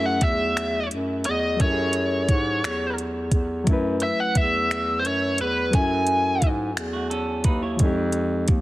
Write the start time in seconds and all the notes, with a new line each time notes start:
Already playing: F#2 F#3 A3 C#4 E4 G#4
0.06 F#5
0.21 E2 E5, kick, closed hi-hat
0.57 finger snap, closed hi-hat
0.91 F#2, closed hi-hat
1.24 E2 D#5, closed hi-hat
1.56 F#3 A4, kick, closed hi-hat
1.61 F#2 C#4 E4 C#5
1.65 G4
1.72 G#4
1.93 closed hi-hat
2.29 G#2, kick, closed hi-hat
2.64 E2, finger snap, closed hi-hat
2.98 closed hi-hat
3.31 E2, kick, closed hi-hat
3.64 F#2 F#3 A3, kick, closed hi-hat
3.69 C#4 E4
3.73 B4
4.00 E5, closed hi-hat
4.20 F#5
4.35 E2 E5, kick, closed hi-hat
4.71 finger snap, closed hi-hat
4.99 C5
5.05 F#2 C#5, closed hi-hat
5.38 E2 B4, closed hi-hat
5.70 F#3 A4, kick, closed hi-hat
5.74 F#2 C#4 E4 G#5
5.79 F#4
5.86 G#5
6.07 closed hi-hat
6.42 G#2, kick, closed hi-hat
6.77 E2, finger snap, closed hi-hat
6.93 A3 F#4
7.10 C#4 A4, closed hi-hat
7.44 D#2 D#4 B4, kick, closed hi-hat
7.62 E4 C#5
7.76 F3 G#3, kick, closed hi-hat
7.81 F2 C4 D#4
7.85 G4
8.12 closed hi-hat
8.48 D#2, kick, closed hi-hat